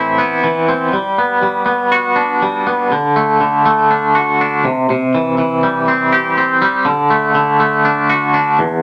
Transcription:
0, 0, Header, 1, 2, 480
1, 0, Start_track
1, 0, Tempo, 494641
1, 892, Time_signature, 4, 2, 24, 8
1, 8559, End_track
2, 0, Start_track
2, 0, Title_t, "Clean electric guitar"
2, 0, Program_c, 0, 27
2, 0, Note_on_c, 0, 45, 63
2, 0, Note_on_c, 0, 52, 59
2, 0, Note_on_c, 0, 60, 63
2, 0, Note_on_c, 0, 64, 70
2, 172, Note_off_c, 0, 45, 0
2, 177, Note_on_c, 0, 59, 60
2, 413, Note_off_c, 0, 52, 0
2, 424, Note_on_c, 0, 52, 64
2, 654, Note_off_c, 0, 60, 0
2, 665, Note_on_c, 0, 60, 59
2, 895, Note_off_c, 0, 59, 0
2, 898, Note_off_c, 0, 64, 0
2, 899, Note_off_c, 0, 52, 0
2, 899, Note_off_c, 0, 60, 0
2, 904, Note_on_c, 0, 55, 62
2, 1148, Note_on_c, 0, 59, 58
2, 1370, Note_off_c, 0, 55, 0
2, 1382, Note_on_c, 0, 55, 62
2, 1597, Note_off_c, 0, 59, 0
2, 1609, Note_on_c, 0, 59, 61
2, 1860, Note_on_c, 0, 66, 71
2, 2093, Note_on_c, 0, 62, 52
2, 2339, Note_off_c, 0, 55, 0
2, 2351, Note_on_c, 0, 55, 59
2, 2576, Note_off_c, 0, 59, 0
2, 2588, Note_on_c, 0, 59, 56
2, 2814, Note_off_c, 0, 62, 0
2, 2818, Note_off_c, 0, 66, 0
2, 2821, Note_off_c, 0, 59, 0
2, 2823, Note_off_c, 0, 55, 0
2, 2831, Note_on_c, 0, 50, 67
2, 3067, Note_on_c, 0, 57, 57
2, 3295, Note_off_c, 0, 50, 0
2, 3306, Note_on_c, 0, 50, 62
2, 3535, Note_off_c, 0, 57, 0
2, 3546, Note_on_c, 0, 57, 67
2, 3793, Note_on_c, 0, 62, 67
2, 4027, Note_on_c, 0, 66, 65
2, 4267, Note_off_c, 0, 62, 0
2, 4279, Note_on_c, 0, 62, 62
2, 4500, Note_off_c, 0, 50, 0
2, 4500, Note_off_c, 0, 57, 0
2, 4501, Note_off_c, 0, 66, 0
2, 4506, Note_off_c, 0, 62, 0
2, 4509, Note_on_c, 0, 48, 68
2, 4746, Note_off_c, 0, 48, 0
2, 4758, Note_on_c, 0, 48, 65
2, 4993, Note_on_c, 0, 52, 63
2, 5212, Note_off_c, 0, 52, 0
2, 5224, Note_on_c, 0, 52, 63
2, 5464, Note_on_c, 0, 55, 67
2, 5707, Note_on_c, 0, 60, 68
2, 5943, Note_on_c, 0, 67, 65
2, 5944, Note_off_c, 0, 48, 0
2, 6174, Note_off_c, 0, 60, 0
2, 6186, Note_on_c, 0, 60, 66
2, 6409, Note_off_c, 0, 55, 0
2, 6417, Note_off_c, 0, 52, 0
2, 6421, Note_on_c, 0, 55, 68
2, 6648, Note_on_c, 0, 50, 71
2, 6656, Note_off_c, 0, 55, 0
2, 6657, Note_off_c, 0, 67, 0
2, 6659, Note_off_c, 0, 60, 0
2, 6892, Note_on_c, 0, 57, 62
2, 7117, Note_off_c, 0, 50, 0
2, 7128, Note_on_c, 0, 50, 69
2, 7362, Note_off_c, 0, 57, 0
2, 7373, Note_on_c, 0, 57, 64
2, 7616, Note_on_c, 0, 62, 66
2, 7855, Note_on_c, 0, 66, 70
2, 8079, Note_off_c, 0, 62, 0
2, 8091, Note_on_c, 0, 62, 65
2, 8328, Note_off_c, 0, 50, 0
2, 8330, Note_off_c, 0, 62, 0
2, 8331, Note_off_c, 0, 57, 0
2, 8332, Note_off_c, 0, 66, 0
2, 8336, Note_on_c, 0, 40, 67
2, 8557, Note_off_c, 0, 40, 0
2, 8559, End_track
0, 0, End_of_file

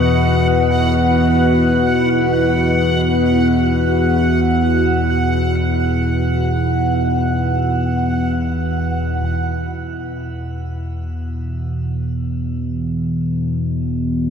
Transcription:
0, 0, Header, 1, 4, 480
1, 0, Start_track
1, 0, Tempo, 500000
1, 13728, End_track
2, 0, Start_track
2, 0, Title_t, "Synth texture"
2, 0, Program_c, 0, 99
2, 0, Note_on_c, 0, 78, 79
2, 8901, Note_off_c, 0, 78, 0
2, 13728, End_track
3, 0, Start_track
3, 0, Title_t, "Ambient pad"
3, 0, Program_c, 1, 92
3, 0, Note_on_c, 1, 64, 91
3, 0, Note_on_c, 1, 66, 65
3, 0, Note_on_c, 1, 71, 77
3, 0, Note_on_c, 1, 75, 71
3, 8871, Note_off_c, 1, 64, 0
3, 8876, Note_off_c, 1, 66, 0
3, 8883, Note_off_c, 1, 71, 0
3, 8883, Note_off_c, 1, 75, 0
3, 13728, End_track
4, 0, Start_track
4, 0, Title_t, "Synth drone"
4, 0, Program_c, 2, 95
4, 0, Note_on_c, 2, 40, 64
4, 0, Note_on_c, 2, 47, 55
4, 8856, Note_off_c, 2, 40, 0
4, 8857, Note_off_c, 2, 47, 0
4, 8867, Note_on_c, 2, 40, 65
4, 8868, Note_on_c, 2, 47, 58
4, 13728, Note_off_c, 2, 40, 0
4, 13728, Note_off_c, 2, 47, 0
4, 13728, End_track
0, 0, End_of_file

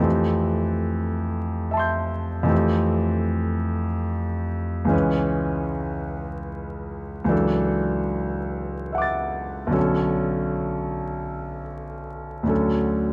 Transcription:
0, 0, Header, 1, 2, 480
1, 0, Start_track
1, 0, Tempo, 816327
1, 32, Time_signature, 6, 3, 24, 8
1, 2432, Tempo, 797872
1, 5312, Tempo, 839161
1, 5792, Tempo, 898204
1, 6752, Tempo, 960000
1, 7537, End_track
2, 0, Start_track
2, 0, Title_t, "Grand piano"
2, 0, Program_c, 0, 0
2, 0, Control_c, 0, 64, 127
2, 0, Note_on_c, 0, 41, 47
2, 0, Note_on_c, 0, 52, 40
2, 1, Note_on_c, 0, 57, 41
2, 8, Note_on_c, 0, 60, 37
2, 19, Note_on_c, 0, 67, 39
2, 40, Control_c, 0, 64, 0
2, 131, Control_c, 0, 64, 127
2, 1006, Note_on_c, 0, 76, 39
2, 1020, Note_on_c, 0, 81, 34
2, 1042, Note_on_c, 0, 84, 39
2, 1055, Note_on_c, 0, 91, 38
2, 1421, Note_off_c, 0, 41, 0
2, 1430, Note_on_c, 0, 41, 51
2, 1432, Note_off_c, 0, 52, 0
2, 1439, Note_off_c, 0, 57, 0
2, 1442, Note_off_c, 0, 60, 0
2, 1442, Note_on_c, 0, 52, 40
2, 1447, Note_off_c, 0, 67, 0
2, 1448, Note_on_c, 0, 57, 42
2, 1457, Note_off_c, 0, 76, 0
2, 1460, Note_on_c, 0, 60, 40
2, 1462, Note_on_c, 0, 67, 40
2, 1464, Note_off_c, 0, 81, 0
2, 1475, Note_off_c, 0, 84, 0
2, 1482, Note_off_c, 0, 91, 0
2, 1487, Control_c, 0, 64, 0
2, 1567, Control_c, 0, 64, 127
2, 2860, Note_on_c, 0, 37, 48
2, 2862, Note_off_c, 0, 41, 0
2, 2865, Note_off_c, 0, 52, 0
2, 2871, Note_off_c, 0, 57, 0
2, 2874, Note_on_c, 0, 52, 40
2, 2877, Note_off_c, 0, 60, 0
2, 2878, Note_off_c, 0, 67, 0
2, 2879, Note_on_c, 0, 56, 41
2, 2886, Note_on_c, 0, 61, 44
2, 2902, Note_on_c, 0, 71, 40
2, 2920, Control_c, 0, 64, 0
2, 3004, Control_c, 0, 64, 127
2, 4293, Note_off_c, 0, 37, 0
2, 4302, Note_off_c, 0, 52, 0
2, 4302, Note_on_c, 0, 37, 49
2, 4306, Note_off_c, 0, 56, 0
2, 4310, Note_off_c, 0, 61, 0
2, 4311, Note_on_c, 0, 52, 39
2, 4318, Note_off_c, 0, 71, 0
2, 4322, Note_on_c, 0, 54, 41
2, 4327, Note_on_c, 0, 62, 43
2, 4340, Note_on_c, 0, 69, 38
2, 4357, Control_c, 0, 64, 0
2, 4430, Control_c, 0, 64, 127
2, 5313, Note_on_c, 0, 76, 35
2, 5326, Note_on_c, 0, 78, 35
2, 5344, Note_on_c, 0, 86, 36
2, 5366, Note_on_c, 0, 93, 36
2, 5738, Note_on_c, 0, 35, 44
2, 5747, Note_off_c, 0, 37, 0
2, 5751, Note_off_c, 0, 52, 0
2, 5751, Note_off_c, 0, 54, 0
2, 5754, Note_on_c, 0, 50, 40
2, 5759, Note_off_c, 0, 62, 0
2, 5759, Note_on_c, 0, 54, 40
2, 5764, Note_off_c, 0, 69, 0
2, 5769, Note_off_c, 0, 76, 0
2, 5769, Note_on_c, 0, 61, 40
2, 5772, Note_on_c, 0, 69, 40
2, 5775, Note_off_c, 0, 78, 0
2, 5785, Note_off_c, 0, 86, 0
2, 5795, Note_off_c, 0, 93, 0
2, 5799, Control_c, 0, 64, 0
2, 5881, Control_c, 0, 64, 127
2, 7182, Note_off_c, 0, 35, 0
2, 7189, Note_off_c, 0, 50, 0
2, 7189, Note_on_c, 0, 38, 42
2, 7191, Note_off_c, 0, 54, 0
2, 7195, Note_off_c, 0, 61, 0
2, 7197, Note_off_c, 0, 69, 0
2, 7200, Note_on_c, 0, 50, 36
2, 7204, Note_on_c, 0, 54, 37
2, 7213, Note_on_c, 0, 61, 34
2, 7217, Note_on_c, 0, 69, 34
2, 7233, Control_c, 0, 64, 0
2, 7312, Control_c, 0, 64, 127
2, 7537, Note_off_c, 0, 38, 0
2, 7537, Note_off_c, 0, 50, 0
2, 7537, Note_off_c, 0, 54, 0
2, 7537, Note_off_c, 0, 61, 0
2, 7537, Note_off_c, 0, 69, 0
2, 7537, End_track
0, 0, End_of_file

